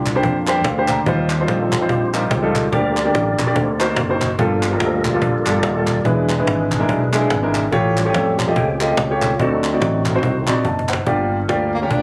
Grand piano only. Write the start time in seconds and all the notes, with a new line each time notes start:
0.15 A#3 D4 G4 C5
0.47 A#3 D4 G4 C5
0.66 F5
0.78 A#3 D4 G4 C5
0.91 A#5
1.07 D#3 G3 D#4 F4 C5
1.40 G3 D#4 F4 C5
1.81 G3 D#4 F4 C5
2.13 G3 D#4 F4 A#4
2.43 G3 D#4 F4 A4
2.72 D3 A#3 D4 G4 D5
3.04 A#3 D4 G4 D5
3.46 A#3 D4 G4 D5
3.56 D3
3.79 A#3 D#4 F#4 C5
4.09 A#3 D#4 F#4 C5
4.39 G2 G3 A#3 F4 A4
4.71 G3 A#3 F4 A#4
5.13 G3 A#3 F4 A4
5.46 G3 A#3 F4 A4
5.76 G3 A#3 F4 A4
6.05 E3 G#3 D4 E4 B4
6.38 G#3 D4 E4 B4
6.79 G#3 D4 E4 A#4
7.13 G#3 D4 E4 G#4
7.42 G#3 D4 E4 A#4
7.71 A2 A3 F4 G4 C#5
8.05 A3 F4 G4 C#5
8.47 A3 F4 G4 D#5
8.80 A3 F4 G4 D#5
9.10 A3 F4 G4 C#5
9.40 D3 C4 D#4 F#4 D5
9.73 C4 D#4 F#4 D5
10.14 C4 D#4 F#4 C5
10.47 C4 D#4 F#4 D5
10.65 D#5 A5
10.89 C5 F#5
11.06 G2 A#3 F4 G4 D5
11.48 A#3 F4 G4 D5
11.81 A#3 F4 G4 A#4